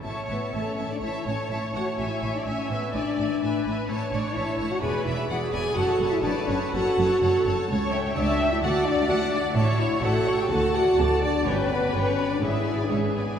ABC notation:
X:1
M:4/4
L:1/16
Q:1/4=126
K:A
V:1 name="Violin section"
[ea]2 [ea]2 [ea]2 [ea]2 [ca]2 [ca]2 [ca]2 [ca]2 | [eg]2 [eg]2 [eg]2 [eg]2 [eg]2 [eg]2 [eg]2 [eg]2 | [ca]2 [ca]2 [ca]2 [ca]2 [db]2 [db]2 [db]2 [db]2 | [ca]2 [ca]2 [ca]2 [ca]2 [ca]2 [ca]2 [ca]2 [ca]2 |
[K:D] [ca]2 [eg]2 [ca]2 [eg]2 [fa]2 [df]2 [fa]2 [df]2 | [ea]2 [cc']2 [ea]2 [cc']2 [Af]2 [da]2 [Af]2 [da]2 | [Bg]2 [db]2 [Bg]2 [db]2 [Be]2 [d^g]2 [Be]2 [dg]2 |]
V:2 name="Violin section"
z2 B2 c3 d e2 c2 e2 f2 | e3 d c2 B2 d6 z2 | z2 d2 e3 f g2 e2 f2 g2 | f3 e d2 c2 f6 z2 |
[K:D] z2 c2 d3 e f2 d2 f2 d2 | z2 e2 f3 g a2 f2 a2 d2 | c2 B2 c3 d e3 d c2 B2 |]
V:3 name="Viola section"
c4 A4 c8- | c4 e4 d4 B4 | c8 B4 G4 | A4 B4 A8 |
[K:D] c4 e4 d8 | c4 A4 F4 d4 | B8 ^G8 |]
V:4 name="French horn section"
z2 B,2 C3 D E2 C2 E2 F2 | E3 D C2 B,2 D6 z2 | z2 D2 E3 F G2 E2 F2 G2 | F3 E D2 C2 F6 z2 |
[K:D] z2 C2 D3 E F2 D2 F2 D2 | z2 E2 F3 G A2 F2 A2 D2 | C2 B,2 C3 D E3 D C2 B,2 |]
V:5 name="Cello section" clef=bass
A,,2 A,,2 A,,2 A,,2 A,,2 A,,2 A,,2 A,,2 | A,,2 A,,2 A,,2 A,,2 A,,2 A,,2 A,,2 A,,2 | A,,2 A,,2 A,,2 A,,2 E,,2 E,,2 E,,2 E,,2 | F,,2 F,,2 F,,2 F,,2 F,,2 F,,2 F,,2 F,,2 |
[K:D] C,,4 C,,4 D,,4 D,,4 | A,,4 A,,4 D,,4 D,,4 | G,,4 G,,4 ^G,,4 G,,4 |]
V:6 name="Double bass section" clef=bass
A,,,2 A,,,2 A,,,2 A,,,2 A,,,2 A,,,2 A,,,2 A,,,2 | A,,,2 A,,,2 A,,,2 A,,,2 A,,,2 A,,,2 A,,,2 A,,,2 | A,,,2 A,,,2 A,,,2 A,,,2 E,,,2 E,,,2 E,,,2 E,,,2 | F,,,2 F,,,2 F,,,2 F,,,2 F,,,2 F,,,2 F,,,2 F,,,2 |
[K:D] C,,4 C,,4 D,,4 D,,4 | A,,,4 A,,,4 D,,4 D,,4 | G,,,4 G,,,4 ^G,,,4 G,,,4 |]